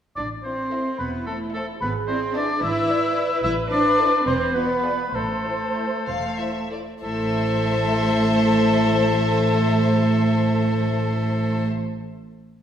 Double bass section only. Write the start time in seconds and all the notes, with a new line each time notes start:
0.17 A1
1.00 E1
1.82 G#1
2.62 G#1
3.43 A1
4.26 E1
5.14 A1
6.06 E1
7.03 A1